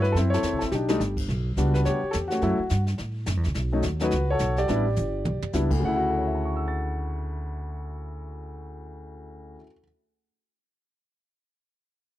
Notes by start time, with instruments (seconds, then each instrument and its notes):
Already playing: upright bass G2, grand piano E4 F#4
0.02 grand piano B4, snare
0.12 upright bass F#2, grand piano A4, brush sweep, snare
0.17 grand piano C4 E4
0.30 grand piano C#5, snare
0.34 grand piano E4 A4
0.42 upright bass E2, snare, hi-hat pedal
0.52 upright bass C2
0.59 upright bass A1, grand piano A4, snare
0.71 upright bass B1, grand piano D4 D#4 G4, snare
0.88 grand piano G3 A3 D4 D#4, snare
1.00 upright bass G1, snare, hi-hat pedal
1.17 kick, crash
1.28 upright bass B1, brush sweep, snare
1.57 upright bass C#2, grand piano G3 B3 D4 F#4, snare, hi-hat pedal
1.74 grand piano B4, snare
1.85 upright bass D2, grand piano G4 C#5, brush sweep, snare
2.03 muted upright bass stroke
2.11 upright bass E2, grand piano A4, snare, hi-hat pedal
2.28 grand piano C#4 F#4, snare
2.32 grand piano A3
2.41 upright bass F#2, grand piano F#3 A3 C#4 E4, brush sweep, snare
2.59 muted upright bass stroke
2.69 upright bass G2, snare, hi-hat pedal
2.87 snare
2.98 upright bass A2, brush sweep, snare
3.26 upright bass F#2, snare, hi-hat pedal
3.37 upright bass E2
3.44 upright bass C#2, snare
3.54 upright bass B1, brush sweep, snare
3.72 grand piano F#3 A3 C#4 D#4
3.82 upright bass D#2, snare, hi-hat pedal
3.99 grand piano F#3 A3 C#4 D#4, snare
4.03 grand piano F#4 B4
4.11 upright bass C#2, brush sweep, snare
4.30 grand piano F#4 A4 C#5
4.39 upright bass B1, snare, hi-hat pedal
4.57 grand piano G4 D5, snare
4.68 upright bass A1, grand piano G3 B3 D4 E4, brush sweep, snare
4.96 upright bass G1, hi-hat pedal, mid tom
5.25 upright bass B1, mid tom
5.42 muted upright bass stroke, floor tom
5.53 upright bass C#2, grand piano G3 B3 D4 E4, snare, hi-hat pedal
5.71 grand piano D2, kick, crash
5.80 upright bass D2, grand piano C#3
5.85 grand piano E4 F#5
5.96 grand piano F#4
6.10 grand piano A4
6.18 grand piano C#5
6.26 grand piano E5
6.34 grand piano A5
6.45 grand piano C#6
6.56 grand piano E6
6.68 grand piano A6